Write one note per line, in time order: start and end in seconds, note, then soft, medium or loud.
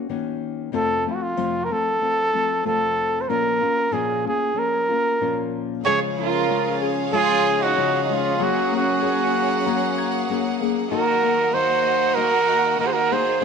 0.09 0.72 D#3 medium
0.09 0.73 A#3 medium
0.09 0.73 C#4 medium
0.09 0.73 F#4 medium
0.72 1.06 F2 medium
0.72 1.06 C3 medium
0.72 1.06 F3 medium
0.72 1.06 A3 medium
0.72 1.06 C4 medium
0.72 1.05 F4 medium
0.72 1.05 A4 medium
1.06 1.36 F3 soft
1.06 1.36 A3 soft
1.06 1.36 C4 soft
1.06 1.36 F4 medium
1.06 1.16 F4 medium
1.15 1.24 F#4 medium
1.22 1.66 F4 medium
1.37 1.70 F2 medium
1.37 1.70 C3 medium
1.37 1.70 F3 medium
1.37 1.70 A3 medium
1.37 1.70 C4 medium
1.37 1.69 F4 medium
1.64 1.74 A#4 medium
1.71 2.00 F3 soft
1.71 2.00 A3 soft
1.71 2.01 C4 soft
1.71 2.00 F4 soft
1.71 2.65 A4 medium
2.01 2.34 F3 medium
2.01 2.33 A3 medium
2.01 2.33 C4 medium
2.01 2.32 F4 medium
2.33 2.64 F3 soft
2.33 2.64 A3 soft
2.33 2.64 C4 soft
2.33 2.63 F4 soft
2.65 3.28 F2 medium
2.65 3.28 C3 medium
2.65 3.29 F3 medium
2.65 3.28 A3 medium
2.65 3.28 C4 medium
2.65 3.29 F4 medium
2.65 3.23 A4 medium
3.21 3.30 C5 medium
3.29 3.62 A#2 medium
3.29 3.62 F3 medium
3.29 3.62 A#3 medium
3.29 3.60 C#4 medium
3.29 3.60 F4 medium
3.29 3.94 A#4 medium
3.61 3.91 A#3 soft
3.61 3.91 C#4 medium
3.61 3.91 F4 medium
3.91 4.25 A#2 medium
3.91 4.25 F3 medium
3.91 4.25 A#3 medium
3.91 4.24 C#4 medium
3.91 4.24 F4 medium
3.91 4.26 G#4 medium
4.25 4.54 A#3 soft
4.25 4.54 C#4 soft
4.25 4.55 F4 soft
4.25 4.60 G#4 medium
4.54 4.88 F3 soft
4.54 4.89 A#3 soft
4.54 4.89 C#4 medium
4.54 4.88 F4 soft
4.58 5.55 A#4 medium
4.89 5.20 A#3 soft
4.89 5.20 C#4 soft
4.89 5.20 F4 medium
5.21 5.85 A#2 medium
5.21 5.85 F3 medium
5.21 5.85 A#3 medium
5.21 5.86 C#4 medium
5.21 5.86 F4 medium
5.84 7.74 C#3 medium
5.84 6.49 C#3 medium
5.84 6.48 F3 medium
5.84 6.49 G#3 medium
5.84 8.36 C#4 medium
5.84 6.49 C#4 medium
5.84 6.49 F4 medium
5.84 10.87 G#4 medium
5.84 6.00 G#4 medium
5.84 6.00 C#5 loud
5.84 8.36 F5 medium
6.18 7.81 F3 medium
6.18 6.78 F4 medium
6.18 6.79 A#4 medium
6.48 7.11 F3 medium
6.48 7.13 G#3 medium
6.48 9.38 C#4 medium
6.48 7.13 C#4 medium
6.48 7.12 F4 medium
6.82 9.01 G#4 medium
7.12 7.76 C#3 medium
7.12 7.75 F3 medium
7.12 7.76 G#3 medium
7.12 7.77 C#4 medium
7.12 7.58 F4 medium
7.12 7.76 F4 medium
7.12 7.64 G#4 loud
7.12 9.03 C#5 medium
7.45 8.45 F5 medium
7.62 8.00 D#4 medium
7.62 8.04 F#4 medium
7.75 8.44 C#3 medium
7.75 8.09 F3 medium
7.75 8.09 G#3 medium
7.75 8.09 C#4 medium
7.75 8.08 F4 medium
8.01 8.09 D#4 medium
8.01 8.15 F#4 medium
8.08 8.44 F3 medium
8.08 8.40 G#3 soft
8.08 8.39 C#4 soft
8.08 8.39 C#4 medium
8.08 8.39 F4 medium
8.13 8.45 F4 medium
8.38 10.26 F#3 medium
8.38 9.03 F#3 medium
8.38 10.88 A#3 medium
8.38 9.04 A#3 medium
8.38 8.72 C#4 medium
8.38 9.03 C#4 medium
8.38 9.03 G#4 medium
8.38 10.88 F#5 medium
8.43 8.74 F#4 medium
8.72 10.60 A#3 medium
8.72 10.58 C#4 medium
8.76 10.59 F#4 medium
9.01 9.66 F#3 medium
9.01 9.66 A#3 medium
9.01 9.65 C#4 medium
9.01 11.28 G#4 medium
9.01 9.66 G#4 medium
9.35 10.95 F#5 medium
9.65 10.29 F#3 medium
9.65 10.30 A#3 medium
9.65 10.29 C#4 medium
9.65 10.29 G#4 medium
9.65 11.05 A#5 medium
9.98 11.03 G#6 medium
10.27 10.96 F#3 medium
10.27 10.62 F#3 medium
10.27 10.62 A#3 medium
10.27 10.61 C#4 medium
10.27 10.60 G#4 medium
10.60 11.22 A#3 medium
10.60 10.90 A#3 soft
10.60 10.91 C#4 medium
10.60 10.91 G#4 medium
10.89 12.77 D#3 medium
10.89 11.53 D#3 medium
10.89 13.45 A#3 medium
10.89 11.54 A#3 medium
10.89 11.54 D#4 medium
10.89 13.39 F#4 medium
10.89 11.49 F#4 medium
10.89 11.54 F#4 medium
10.89 11.55 A#4 loud
10.89 13.39 D#5 medium
11.22 13.10 A#3 medium
11.53 12.16 D#3 medium
11.53 12.16 A#3 medium
11.53 12.17 D#4 medium
11.53 12.15 F#4 medium
11.53 13.45 F#4 medium
11.53 12.16 F#4 medium
11.53 12.16 C5 medium
11.85 13.45 D#5 medium
12.14 12.78 D#3 medium
12.14 12.78 A#3 medium
12.14 12.79 D#4 medium
12.14 12.78 F#4 medium
12.14 12.78 A#4 loud
12.14 13.45 A#5 medium
12.48 13.45 F#6 medium
12.78 13.45 D#3 medium
12.78 13.12 D#3 soft
12.78 13.12 A#3 soft
12.78 13.11 D#4 medium
12.78 12.86 F#4 medium
12.78 13.10 F#4 medium
12.78 12.89 A#4 medium
12.86 12.93 G#4 medium
12.86 12.95 C5 medium
12.92 13.11 F#4 medium
12.92 13.14 A#4 medium
13.10 13.45 A#3 medium
13.10 13.42 A#3 soft
13.10 13.41 D#4 soft
13.10 13.42 F#4 medium
13.10 13.39 G#4 medium
13.10 13.42 C5 medium
13.40 13.45 G#2 medium
13.40 13.45 G#3 medium
13.40 13.45 G#4 medium